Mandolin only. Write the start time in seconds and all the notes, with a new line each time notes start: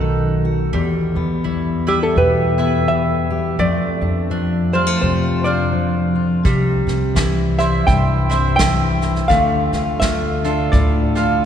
Already playing: A3 D#4 A4 F#5
0.73 G3
1.44 E4
1.87 E4 B4 E5
2.58 E4 B4 E5
3.59 A3
4.31 D4
4.74 D4 C5 F5
5.45 D4 C5 F5
6.45 G3
7.16 E4
7.58 E4 C5 E5
8.30 E4 C5 E5
9.29 A3
10.02 F4
10.44 F4 A4
11.15 F4 A4 F5